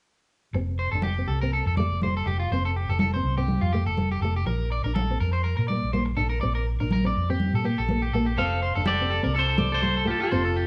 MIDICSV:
0, 0, Header, 1, 8, 480
1, 0, Start_track
1, 0, Key_signature, -1, "major"
1, 0, Tempo, 489796
1, 520, Time_signature, 4, 2, 24, 8
1, 10456, End_track
2, 0, Start_track
2, 0, Title_t, "Clean electric guitar"
2, 0, Program_c, 0, 27
2, 775, Note_on_c, 0, 72, 66
2, 892, Note_off_c, 0, 72, 0
2, 897, Note_on_c, 0, 69, 56
2, 999, Note_off_c, 0, 69, 0
2, 1012, Note_on_c, 0, 67, 75
2, 1235, Note_off_c, 0, 67, 0
2, 1250, Note_on_c, 0, 69, 67
2, 1370, Note_off_c, 0, 69, 0
2, 1386, Note_on_c, 0, 70, 70
2, 1484, Note_off_c, 0, 70, 0
2, 1500, Note_on_c, 0, 69, 68
2, 1616, Note_off_c, 0, 69, 0
2, 1637, Note_on_c, 0, 69, 55
2, 1730, Note_off_c, 0, 69, 0
2, 1737, Note_on_c, 0, 74, 64
2, 1959, Note_off_c, 0, 74, 0
2, 1989, Note_on_c, 0, 72, 65
2, 2100, Note_off_c, 0, 72, 0
2, 2122, Note_on_c, 0, 69, 62
2, 2213, Note_off_c, 0, 69, 0
2, 2222, Note_on_c, 0, 67, 73
2, 2337, Note_off_c, 0, 67, 0
2, 2345, Note_on_c, 0, 65, 63
2, 2444, Note_off_c, 0, 65, 0
2, 2467, Note_on_c, 0, 72, 75
2, 2580, Note_off_c, 0, 72, 0
2, 2597, Note_on_c, 0, 69, 65
2, 2691, Note_off_c, 0, 69, 0
2, 2707, Note_on_c, 0, 67, 58
2, 2820, Note_off_c, 0, 67, 0
2, 2836, Note_on_c, 0, 69, 62
2, 2926, Note_off_c, 0, 69, 0
2, 2938, Note_on_c, 0, 69, 76
2, 3055, Note_off_c, 0, 69, 0
2, 3073, Note_on_c, 0, 72, 61
2, 3293, Note_off_c, 0, 72, 0
2, 3307, Note_on_c, 0, 67, 66
2, 3530, Note_off_c, 0, 67, 0
2, 3540, Note_on_c, 0, 65, 64
2, 3643, Note_off_c, 0, 65, 0
2, 3650, Note_on_c, 0, 67, 65
2, 3772, Note_off_c, 0, 67, 0
2, 3786, Note_on_c, 0, 69, 63
2, 4010, Note_off_c, 0, 69, 0
2, 4032, Note_on_c, 0, 67, 67
2, 4129, Note_off_c, 0, 67, 0
2, 4137, Note_on_c, 0, 69, 69
2, 4256, Note_off_c, 0, 69, 0
2, 4276, Note_on_c, 0, 67, 60
2, 4371, Note_off_c, 0, 67, 0
2, 4376, Note_on_c, 0, 70, 77
2, 4600, Note_off_c, 0, 70, 0
2, 4622, Note_on_c, 0, 74, 65
2, 4739, Note_off_c, 0, 74, 0
2, 4743, Note_on_c, 0, 70, 60
2, 4845, Note_off_c, 0, 70, 0
2, 4850, Note_on_c, 0, 69, 80
2, 5077, Note_off_c, 0, 69, 0
2, 5099, Note_on_c, 0, 70, 67
2, 5217, Note_off_c, 0, 70, 0
2, 5221, Note_on_c, 0, 72, 64
2, 5324, Note_off_c, 0, 72, 0
2, 5328, Note_on_c, 0, 70, 70
2, 5443, Note_off_c, 0, 70, 0
2, 5455, Note_on_c, 0, 70, 57
2, 5560, Note_off_c, 0, 70, 0
2, 5566, Note_on_c, 0, 74, 72
2, 5794, Note_off_c, 0, 74, 0
2, 5813, Note_on_c, 0, 72, 60
2, 5932, Note_off_c, 0, 72, 0
2, 6043, Note_on_c, 0, 69, 74
2, 6166, Note_off_c, 0, 69, 0
2, 6170, Note_on_c, 0, 70, 65
2, 6277, Note_off_c, 0, 70, 0
2, 6282, Note_on_c, 0, 74, 76
2, 6408, Note_off_c, 0, 74, 0
2, 6419, Note_on_c, 0, 70, 68
2, 6522, Note_off_c, 0, 70, 0
2, 6667, Note_on_c, 0, 70, 56
2, 6766, Note_off_c, 0, 70, 0
2, 6787, Note_on_c, 0, 70, 80
2, 6901, Note_off_c, 0, 70, 0
2, 6923, Note_on_c, 0, 74, 68
2, 7138, Note_off_c, 0, 74, 0
2, 7154, Note_on_c, 0, 67, 65
2, 7374, Note_off_c, 0, 67, 0
2, 7402, Note_on_c, 0, 69, 57
2, 7494, Note_off_c, 0, 69, 0
2, 7501, Note_on_c, 0, 67, 61
2, 7617, Note_off_c, 0, 67, 0
2, 7627, Note_on_c, 0, 69, 68
2, 7849, Note_off_c, 0, 69, 0
2, 7863, Note_on_c, 0, 67, 61
2, 7963, Note_off_c, 0, 67, 0
2, 7973, Note_on_c, 0, 69, 64
2, 8093, Note_off_c, 0, 69, 0
2, 8099, Note_on_c, 0, 67, 61
2, 8201, Note_off_c, 0, 67, 0
2, 8208, Note_on_c, 0, 69, 81
2, 8434, Note_off_c, 0, 69, 0
2, 8453, Note_on_c, 0, 72, 68
2, 8572, Note_off_c, 0, 72, 0
2, 8579, Note_on_c, 0, 69, 65
2, 8680, Note_off_c, 0, 69, 0
2, 8681, Note_on_c, 0, 67, 84
2, 8909, Note_off_c, 0, 67, 0
2, 8923, Note_on_c, 0, 69, 69
2, 9046, Note_off_c, 0, 69, 0
2, 9054, Note_on_c, 0, 70, 66
2, 9157, Note_off_c, 0, 70, 0
2, 9161, Note_on_c, 0, 69, 73
2, 9281, Note_off_c, 0, 69, 0
2, 9293, Note_on_c, 0, 69, 59
2, 9393, Note_off_c, 0, 69, 0
2, 9396, Note_on_c, 0, 74, 72
2, 9626, Note_off_c, 0, 74, 0
2, 9634, Note_on_c, 0, 72, 69
2, 9760, Note_off_c, 0, 72, 0
2, 9773, Note_on_c, 0, 69, 59
2, 9873, Note_on_c, 0, 67, 70
2, 9875, Note_off_c, 0, 69, 0
2, 9997, Note_on_c, 0, 69, 63
2, 9999, Note_off_c, 0, 67, 0
2, 10106, Note_off_c, 0, 69, 0
2, 10111, Note_on_c, 0, 72, 84
2, 10238, Note_off_c, 0, 72, 0
2, 10243, Note_on_c, 0, 69, 68
2, 10349, Note_off_c, 0, 69, 0
2, 10355, Note_on_c, 0, 67, 68
2, 10456, Note_off_c, 0, 67, 0
2, 10456, End_track
3, 0, Start_track
3, 0, Title_t, "Clean electric guitar"
3, 0, Program_c, 1, 27
3, 8213, Note_on_c, 1, 72, 58
3, 8217, Note_on_c, 1, 77, 87
3, 8654, Note_off_c, 1, 72, 0
3, 8681, Note_on_c, 1, 69, 70
3, 8693, Note_off_c, 1, 77, 0
3, 8697, Note_on_c, 1, 74, 88
3, 9127, Note_off_c, 1, 69, 0
3, 9175, Note_on_c, 1, 69, 63
3, 9183, Note_off_c, 1, 74, 0
3, 9202, Note_on_c, 1, 72, 80
3, 9512, Note_off_c, 1, 69, 0
3, 9526, Note_off_c, 1, 72, 0
3, 9531, Note_on_c, 1, 69, 61
3, 9551, Note_on_c, 1, 72, 78
3, 9855, Note_off_c, 1, 69, 0
3, 9882, Note_on_c, 1, 65, 47
3, 9899, Note_off_c, 1, 72, 0
3, 9905, Note_on_c, 1, 69, 69
3, 9994, Note_off_c, 1, 65, 0
3, 10006, Note_on_c, 1, 65, 54
3, 10014, Note_off_c, 1, 69, 0
3, 10031, Note_on_c, 1, 69, 73
3, 10456, Note_off_c, 1, 65, 0
3, 10456, Note_off_c, 1, 69, 0
3, 10456, End_track
4, 0, Start_track
4, 0, Title_t, "Nylon-string guitar"
4, 0, Program_c, 2, 24
4, 540, Note_on_c, 2, 60, 76
4, 712, Note_off_c, 2, 60, 0
4, 929, Note_on_c, 2, 62, 55
4, 1094, Note_off_c, 2, 62, 0
4, 1159, Note_on_c, 2, 60, 55
4, 1328, Note_off_c, 2, 60, 0
4, 1397, Note_on_c, 2, 60, 64
4, 1567, Note_off_c, 2, 60, 0
4, 1754, Note_on_c, 2, 57, 66
4, 1921, Note_off_c, 2, 57, 0
4, 1991, Note_on_c, 2, 57, 62
4, 2160, Note_off_c, 2, 57, 0
4, 2479, Note_on_c, 2, 60, 74
4, 2645, Note_off_c, 2, 60, 0
4, 3096, Note_on_c, 2, 60, 62
4, 3260, Note_off_c, 2, 60, 0
4, 3308, Note_on_c, 2, 60, 67
4, 3483, Note_off_c, 2, 60, 0
4, 3665, Note_on_c, 2, 57, 73
4, 3837, Note_off_c, 2, 57, 0
4, 4158, Note_on_c, 2, 57, 71
4, 4325, Note_off_c, 2, 57, 0
4, 4372, Note_on_c, 2, 53, 77
4, 4549, Note_off_c, 2, 53, 0
4, 4759, Note_on_c, 2, 62, 59
4, 4930, Note_off_c, 2, 62, 0
4, 5003, Note_on_c, 2, 60, 58
4, 5172, Note_off_c, 2, 60, 0
4, 5598, Note_on_c, 2, 58, 68
4, 5766, Note_off_c, 2, 58, 0
4, 5814, Note_on_c, 2, 58, 66
4, 5990, Note_off_c, 2, 58, 0
4, 6046, Note_on_c, 2, 62, 76
4, 6225, Note_off_c, 2, 62, 0
4, 6300, Note_on_c, 2, 60, 85
4, 6474, Note_off_c, 2, 60, 0
4, 6669, Note_on_c, 2, 62, 56
4, 6843, Note_off_c, 2, 62, 0
4, 6902, Note_on_c, 2, 60, 59
4, 7079, Note_off_c, 2, 60, 0
4, 7152, Note_on_c, 2, 60, 67
4, 7325, Note_off_c, 2, 60, 0
4, 7493, Note_on_c, 2, 58, 67
4, 7669, Note_off_c, 2, 58, 0
4, 7741, Note_on_c, 2, 58, 70
4, 7913, Note_off_c, 2, 58, 0
4, 7985, Note_on_c, 2, 58, 77
4, 8156, Note_off_c, 2, 58, 0
4, 8218, Note_on_c, 2, 60, 75
4, 8391, Note_off_c, 2, 60, 0
4, 8595, Note_on_c, 2, 62, 61
4, 8765, Note_off_c, 2, 62, 0
4, 8831, Note_on_c, 2, 60, 55
4, 9002, Note_off_c, 2, 60, 0
4, 9046, Note_on_c, 2, 60, 72
4, 9226, Note_off_c, 2, 60, 0
4, 9390, Note_on_c, 2, 57, 71
4, 9572, Note_off_c, 2, 57, 0
4, 9629, Note_on_c, 2, 57, 67
4, 9811, Note_off_c, 2, 57, 0
4, 9854, Note_on_c, 2, 57, 80
4, 10041, Note_off_c, 2, 57, 0
4, 10116, Note_on_c, 2, 60, 84
4, 10295, Note_off_c, 2, 60, 0
4, 10456, End_track
5, 0, Start_track
5, 0, Title_t, "Fingered electric bass"
5, 0, Program_c, 3, 33
5, 525, Note_on_c, 3, 29, 81
5, 855, Note_off_c, 3, 29, 0
5, 905, Note_on_c, 3, 29, 70
5, 1212, Note_off_c, 3, 29, 0
5, 1256, Note_on_c, 3, 36, 72
5, 1581, Note_off_c, 3, 36, 0
5, 1622, Note_on_c, 3, 41, 69
5, 1833, Note_off_c, 3, 41, 0
5, 1857, Note_on_c, 3, 29, 73
5, 2169, Note_off_c, 3, 29, 0
5, 2212, Note_on_c, 3, 29, 67
5, 2423, Note_off_c, 3, 29, 0
5, 2459, Note_on_c, 3, 29, 81
5, 2784, Note_off_c, 3, 29, 0
5, 2827, Note_on_c, 3, 29, 75
5, 3135, Note_off_c, 3, 29, 0
5, 3174, Note_on_c, 3, 36, 69
5, 3502, Note_off_c, 3, 36, 0
5, 3543, Note_on_c, 3, 41, 76
5, 3755, Note_off_c, 3, 41, 0
5, 3776, Note_on_c, 3, 29, 73
5, 4089, Note_off_c, 3, 29, 0
5, 4126, Note_on_c, 3, 29, 76
5, 4341, Note_off_c, 3, 29, 0
5, 4366, Note_on_c, 3, 34, 79
5, 4698, Note_off_c, 3, 34, 0
5, 4743, Note_on_c, 3, 34, 69
5, 5053, Note_off_c, 3, 34, 0
5, 5100, Note_on_c, 3, 41, 76
5, 5425, Note_off_c, 3, 41, 0
5, 5468, Note_on_c, 3, 46, 87
5, 5678, Note_off_c, 3, 46, 0
5, 5711, Note_on_c, 3, 34, 74
5, 6018, Note_off_c, 3, 34, 0
5, 6063, Note_on_c, 3, 34, 74
5, 6271, Note_off_c, 3, 34, 0
5, 6308, Note_on_c, 3, 34, 86
5, 6630, Note_off_c, 3, 34, 0
5, 6684, Note_on_c, 3, 34, 75
5, 6985, Note_off_c, 3, 34, 0
5, 7025, Note_on_c, 3, 41, 65
5, 7347, Note_off_c, 3, 41, 0
5, 7385, Note_on_c, 3, 46, 81
5, 7595, Note_off_c, 3, 46, 0
5, 7628, Note_on_c, 3, 34, 81
5, 7935, Note_off_c, 3, 34, 0
5, 7977, Note_on_c, 3, 34, 81
5, 8186, Note_off_c, 3, 34, 0
5, 8207, Note_on_c, 3, 29, 85
5, 8536, Note_off_c, 3, 29, 0
5, 8587, Note_on_c, 3, 29, 78
5, 9009, Note_off_c, 3, 29, 0
5, 9071, Note_on_c, 3, 36, 76
5, 9918, Note_off_c, 3, 36, 0
5, 10131, Note_on_c, 3, 29, 91
5, 10455, Note_off_c, 3, 29, 0
5, 10456, End_track
6, 0, Start_track
6, 0, Title_t, "Muted clean electric guitar strokes"
6, 536, Note_on_c, 9, 29, 77
6, 634, Note_off_c, 9, 29, 0
6, 5936, Note_on_c, 9, 29, 64
6, 6034, Note_off_c, 9, 29, 0
6, 10456, End_track
7, 0, Start_track
7, 0, Title_t, "Muted nylon-string guitar strokes"
7, 2229, Note_on_c, 9, 29, 72
7, 2327, Note_off_c, 9, 29, 0
7, 2850, Note_on_c, 9, 29, 56
7, 2948, Note_off_c, 9, 29, 0
7, 3894, Note_on_c, 9, 29, 74
7, 3992, Note_off_c, 9, 29, 0
7, 10456, End_track
8, 0, Start_track
8, 0, Title_t, "Drums"
8, 520, Note_on_c, 9, 62, 21
8, 618, Note_off_c, 9, 62, 0
8, 1000, Note_on_c, 9, 63, 71
8, 1098, Note_off_c, 9, 63, 0
8, 1242, Note_on_c, 9, 62, 25
8, 1340, Note_off_c, 9, 62, 0
8, 1487, Note_on_c, 9, 62, 24
8, 1585, Note_off_c, 9, 62, 0
8, 1734, Note_on_c, 9, 62, 27
8, 1734, Note_on_c, 9, 63, 59
8, 1832, Note_off_c, 9, 62, 0
8, 1832, Note_off_c, 9, 63, 0
8, 1974, Note_on_c, 9, 63, 66
8, 2072, Note_off_c, 9, 63, 0
8, 2452, Note_on_c, 9, 62, 21
8, 2550, Note_off_c, 9, 62, 0
8, 2930, Note_on_c, 9, 63, 77
8, 3028, Note_off_c, 9, 63, 0
8, 3169, Note_on_c, 9, 62, 28
8, 3267, Note_off_c, 9, 62, 0
8, 3412, Note_on_c, 9, 62, 26
8, 3412, Note_on_c, 9, 63, 68
8, 3510, Note_off_c, 9, 62, 0
8, 3510, Note_off_c, 9, 63, 0
8, 3656, Note_on_c, 9, 62, 25
8, 3754, Note_off_c, 9, 62, 0
8, 3893, Note_on_c, 9, 63, 64
8, 3991, Note_off_c, 9, 63, 0
8, 4384, Note_on_c, 9, 62, 23
8, 4482, Note_off_c, 9, 62, 0
8, 4857, Note_on_c, 9, 63, 72
8, 4955, Note_off_c, 9, 63, 0
8, 5091, Note_on_c, 9, 62, 25
8, 5189, Note_off_c, 9, 62, 0
8, 5347, Note_on_c, 9, 62, 24
8, 5445, Note_off_c, 9, 62, 0
8, 5584, Note_on_c, 9, 62, 24
8, 5584, Note_on_c, 9, 63, 53
8, 5682, Note_off_c, 9, 62, 0
8, 5682, Note_off_c, 9, 63, 0
8, 5823, Note_on_c, 9, 63, 59
8, 5921, Note_off_c, 9, 63, 0
8, 6291, Note_on_c, 9, 62, 21
8, 6389, Note_off_c, 9, 62, 0
8, 6768, Note_on_c, 9, 63, 69
8, 6866, Note_off_c, 9, 63, 0
8, 7011, Note_on_c, 9, 62, 25
8, 7109, Note_off_c, 9, 62, 0
8, 7251, Note_on_c, 9, 62, 25
8, 7251, Note_on_c, 9, 63, 63
8, 7349, Note_off_c, 9, 62, 0
8, 7349, Note_off_c, 9, 63, 0
8, 7493, Note_on_c, 9, 62, 26
8, 7591, Note_off_c, 9, 62, 0
8, 7730, Note_on_c, 9, 63, 62
8, 7828, Note_off_c, 9, 63, 0
8, 8208, Note_on_c, 9, 62, 22
8, 8306, Note_off_c, 9, 62, 0
8, 8679, Note_on_c, 9, 63, 77
8, 8777, Note_off_c, 9, 63, 0
8, 8925, Note_on_c, 9, 62, 26
8, 9023, Note_off_c, 9, 62, 0
8, 9161, Note_on_c, 9, 62, 26
8, 9259, Note_off_c, 9, 62, 0
8, 9391, Note_on_c, 9, 62, 29
8, 9391, Note_on_c, 9, 63, 72
8, 9489, Note_off_c, 9, 62, 0
8, 9489, Note_off_c, 9, 63, 0
8, 9639, Note_on_c, 9, 63, 66
8, 9737, Note_off_c, 9, 63, 0
8, 10110, Note_on_c, 9, 62, 25
8, 10208, Note_off_c, 9, 62, 0
8, 10456, End_track
0, 0, End_of_file